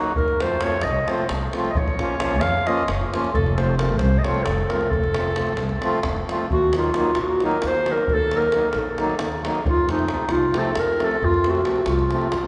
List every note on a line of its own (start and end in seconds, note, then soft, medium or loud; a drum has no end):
0.00 0.12 F#3 medium
0.00 0.12 A#3 medium
0.00 0.12 D#4 soft
0.00 0.13 F#4 medium
0.16 0.85 F2 loud
0.16 0.43 A#4 medium
0.16 davul low medium
0.28 davul high soft
0.40 0.56 F3 medium
0.40 0.56 A3 medium
0.40 0.57 C4 medium
0.40 0.57 F4 medium
0.40 0.65 C5 medium
0.40 davul high medium
0.61 0.77 F3 medium
0.61 0.77 A3 medium
0.61 0.77 C4 soft
0.61 0.78 F4 medium
0.61 0.85 C#5 medium
0.61 davul high medium
0.72 davul high soft
0.81 0.98 C2 medium
0.81 1.11 D#5 medium
0.81 davul high medium
1.06 1.23 F3 medium
1.06 1.24 A3 medium
1.06 1.24 C4 medium
1.06 1.25 F4 medium
1.06 1.30 C5 medium
1.06 davul high medium
1.18 davul high soft
1.29 1.45 C2 medium
1.29 davul high medium
1.41 davul high soft
1.53 1.70 F3 medium
1.53 1.70 A3 medium
1.53 1.71 C4 medium
1.53 1.71 F4 medium
1.53 davul high medium
1.65 davul high soft
1.70 1.79 D#5 medium
1.75 2.42 A#1 loud
1.75 2.42 C#5 medium
1.75 davul low medium
1.88 davul high soft
1.99 2.15 F3 medium
1.99 2.15 A#3 medium
1.99 2.16 C#4 medium
1.99 2.16 F4 medium
1.99 davul high medium
2.19 2.36 F3 medium
2.19 2.36 A#3 soft
2.19 2.36 C#4 soft
2.19 2.37 F4 medium
2.19 davul high medium
2.31 davul high soft
2.41 2.57 F2 medium
2.41 2.69 F5 medium
2.41 davul high medium
2.66 2.83 F3 medium
2.66 2.83 A#3 medium
2.66 2.83 C#4 medium
2.66 2.83 F4 medium
2.66 2.88 D#5 medium
2.66 davul high medium
2.77 davul high soft
2.88 3.03 F#1 medium
2.88 davul high medium
3.01 davul high soft
3.12 3.29 F3 medium
3.12 3.29 A#3 medium
3.12 3.30 C#4 medium
3.12 3.30 F4 medium
3.12 davul high medium
3.24 davul high soft
3.34 4.00 F1 loud
3.34 3.57 A4 loud
3.34 davul low medium
3.46 davul high soft
3.58 3.74 F3 medium
3.58 3.74 A3 soft
3.58 3.74 C4 medium
3.58 3.75 F4 medium
3.58 3.77 C5 medium
3.58 davul high medium
3.78 3.95 F3 medium
3.78 3.95 A3 soft
3.78 3.95 C4 medium
3.78 3.95 F4 medium
3.78 4.00 A#4 medium
3.78 davul high medium
3.89 davul high soft
3.98 4.15 C2 medium
3.98 4.20 C5 medium
3.98 davul high medium
4.18 4.25 D#5 medium
4.24 4.41 F3 medium
4.24 4.41 A3 medium
4.24 4.41 C4 medium
4.24 4.42 F4 medium
4.24 4.45 C#5 medium
4.24 davul high medium
4.34 davul high soft
4.44 4.62 F1 medium
4.44 4.71 A4 medium
4.44 davul high medium
4.58 davul high soft
4.69 4.87 F3 soft
4.69 4.88 A3 soft
4.69 4.88 C4 medium
4.69 4.88 F4 medium
4.69 4.91 A#4 medium
4.69 davul high medium
4.81 davul high soft
4.90 5.59 F1 medium
4.90 6.03 A4 loud
4.90 davul low medium
5.04 davul high soft
5.14 5.32 F3 medium
5.14 5.32 A3 soft
5.14 5.32 C4 medium
5.14 5.33 F4 medium
5.14 davul high medium
5.36 5.52 F3 medium
5.36 5.53 A3 medium
5.36 5.53 C4 soft
5.36 5.53 F4 medium
5.36 davul high medium
5.47 davul high soft
5.57 5.74 C2 medium
5.57 davul high medium
5.69 davul high soft
5.82 5.99 F3 medium
5.82 5.99 A3 medium
5.82 5.99 C4 medium
5.82 6.00 F4 medium
5.82 davul high medium
6.03 6.20 F1 medium
6.03 davul high medium
6.03 davul low medium
6.16 davul high soft
6.29 6.45 F3 medium
6.29 6.46 A3 medium
6.29 6.46 C4 medium
6.29 6.46 F4 medium
6.29 davul high medium
6.50 6.90 D#2 medium
6.50 6.74 F#4 medium
6.50 davul low medium
6.73 6.90 D#3 medium
6.73 6.90 F#3 medium
6.73 6.91 A#3 soft
6.73 6.91 D#4 medium
6.73 davul high medium
6.78 7.21 F4 medium
6.84 davul high soft
6.94 7.11 D#3 medium
6.94 7.11 F#3 medium
6.94 7.11 A#3 medium
6.94 7.11 D#4 medium
6.94 davul high medium
7.15 7.44 A#1 medium
7.15 davul high medium
7.20 7.47 F#4 medium
7.40 7.57 D#3 medium
7.40 7.57 F#3 medium
7.40 7.58 A#3 medium
7.40 7.58 D#4 medium
7.40 davul high soft
7.45 7.69 A#4 medium
7.51 davul high soft
7.62 7.91 D#2 medium
7.62 davul high medium
7.67 7.93 C5 medium
7.75 davul high soft
7.86 8.03 D#3 soft
7.86 8.03 F#3 medium
7.86 8.04 A#3 soft
7.86 8.04 D#4 medium
7.86 davul high medium
7.92 8.15 A#4 medium
7.97 davul high soft
8.08 8.48 D#2 medium
8.08 davul low medium
8.13 8.39 A4 loud
8.31 8.48 D#3 medium
8.31 8.48 F#3 medium
8.31 8.48 A#3 soft
8.31 8.48 D#4 medium
8.31 davul high medium
8.37 8.69 A#4 medium
8.42 davul high soft
8.52 8.68 D#3 medium
8.52 8.68 F#3 soft
8.52 8.69 A#3 medium
8.52 8.69 D#4 medium
8.52 davul high medium
8.69 8.79 A#4 medium
8.69 davul high medium
8.74 9.02 A#1 medium
8.74 9.47 A4 medium
8.98 9.14 D#3 medium
8.98 9.14 F#3 medium
8.98 9.14 A#3 medium
8.98 9.15 D#4 medium
8.98 davul high medium
9.10 davul high soft
9.19 9.48 D#2 medium
9.19 davul high medium
9.32 davul high soft
9.44 9.60 D#3 medium
9.44 9.60 F#3 medium
9.44 9.60 A#3 medium
9.44 9.61 D#4 medium
9.44 davul high medium
9.55 davul high soft
9.65 10.05 F2 loud
9.65 9.89 F4 medium
9.65 davul low medium
9.88 10.04 C3 medium
9.88 10.04 F3 medium
9.88 10.04 A3 soft
9.88 10.05 C4 medium
9.88 10.34 D#4 medium
9.88 davul high medium
9.99 davul high soft
10.08 10.25 C3 medium
10.08 10.25 F3 medium
10.08 10.25 A3 soft
10.08 10.26 C4 medium
10.08 davul high medium
10.29 10.58 C2 medium
10.29 10.60 F4 medium
10.29 davul high medium
10.54 10.70 C3 medium
10.54 10.71 F3 medium
10.54 10.71 A3 medium
10.54 10.71 C4 medium
10.54 10.81 A4 medium
10.54 davul high medium
10.65 davul high soft
10.75 11.04 F2 medium
10.75 11.05 A#4 medium
10.75 davul high medium
10.87 davul high soft
11.00 11.16 C3 medium
11.00 11.17 F3 medium
11.00 11.17 A3 soft
11.00 11.17 C4 medium
11.00 11.27 A4 loud
11.00 davul high soft
11.11 davul high soft
11.22 11.61 F2 loud
11.22 11.51 F4 loud
11.22 davul low medium
11.34 davul high soft
11.44 11.60 C3 medium
11.44 11.61 F3 soft
11.44 11.61 A3 soft
11.44 11.61 C4 medium
11.44 davul high medium
11.49 11.90 F#4 medium
11.55 davul high soft
11.64 11.81 C3 medium
11.64 11.81 F3 soft
11.64 11.81 A3 soft
11.64 11.81 C4 medium
11.64 davul high medium
11.76 davul high soft
11.86 12.14 C2 medium
11.86 12.47 F4 medium
11.86 davul high medium
11.99 davul high soft
12.10 12.27 C3 medium
12.10 12.27 F3 medium
12.10 12.27 A3 medium
12.10 12.28 C4 medium
12.10 davul high soft
12.21 davul high soft
12.32 12.47 F2 medium
12.32 davul high medium